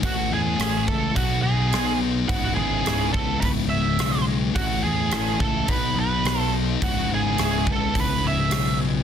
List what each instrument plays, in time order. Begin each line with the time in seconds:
0.02 picked electric bass A1, distorted electric guitar A2 E3 A3 C#4 E4 A4, clean electric guitar A2, lead electric guitar F#4, kick, open hi-hat
0.31 picked electric bass E2, lead electric guitar G#4
0.59 picked electric bass A1, clean electric guitar A4, cross-stick, open hi-hat
0.88 picked electric bass C#2, clean electric guitar E4, lead electric guitar A4, kick
1.16 picked electric bass B1, distorted electric guitar B2 F#3 B3 D#4 F#4 B4, clean electric guitar B2, lead electric guitar F#4, kick, open hi-hat
1.42 picked electric bass B1, clean electric guitar D#4, lead electric guitar G#4
1.73 picked electric bass B1, clean electric guitar B3, cross-stick, open hi-hat
2.02 clean electric guitar D#4
2.27 picked electric bass C#1, distorted electric guitar C#2 G#2 C#3 G#3 B3 E4, lead electric guitar F#4, kick, open hi-hat
2.31 clean electric guitar C#2
2.55 picked electric bass G#1, lead electric guitar G#4
2.85 picked electric bass C#1, clean electric guitar E4, cross-stick, open hi-hat
3.13 picked electric bass C#2, clean electric guitar B3, lead electric guitar A4, kick
3.40 picked electric bass C#1, clean electric guitar C#3, lead electric guitar B4, kick, open hi-hat
3.69 picked electric bass C#1, clean electric guitar G#3, lead electric guitar E5
3.98 picked electric bass B1, clean electric guitar C#3, cross-stick, open hi-hat
4.27 clean electric guitar G#3
4.54 picked electric bass A1, distorted electric guitar A2 E3 A3 C#4 E4 A4, clean electric guitar A2, lead electric guitar F#4, kick, open hi-hat
4.84 picked electric bass E2, lead electric guitar G#4
5.11 picked electric bass A1, clean electric guitar A4, cross-stick, open hi-hat
5.40 picked electric bass C#2, clean electric guitar E4, lead electric guitar A4, kick
5.67 picked electric bass B1, distorted electric guitar B2 F#3 B3 D#4 F#4 B4, clean electric guitar B2, lead electric guitar B4, kick, open hi-hat
5.96 picked electric bass B1, clean electric guitar D#4, lead electric guitar B4
6.24 picked electric bass B1, clean electric guitar B3, cross-stick, open hi-hat
6.40 lead electric guitar A4
6.53 clean electric guitar D#4
6.82 picked electric bass C#1, distorted electric guitar C#2 G#2 C#3 G#3 B3 E4, clean electric guitar C#2, lead electric guitar F#4, kick, open hi-hat
7.09 picked electric bass G#1
7.14 lead electric guitar G#4
7.38 picked electric bass C#1, clean electric guitar E4, cross-stick, open hi-hat
7.67 picked electric bass C#2, clean electric guitar B3, kick
7.72 lead electric guitar A4
7.95 picked electric bass C#1, clean electric guitar C#3, kick, open hi-hat
8.00 lead electric guitar B4
8.23 picked electric bass C#1, clean electric guitar G#3
8.27 lead electric guitar E5
8.51 picked electric bass B1, clean electric guitar C#3, cross-stick, open hi-hat
8.80 clean electric guitar G#3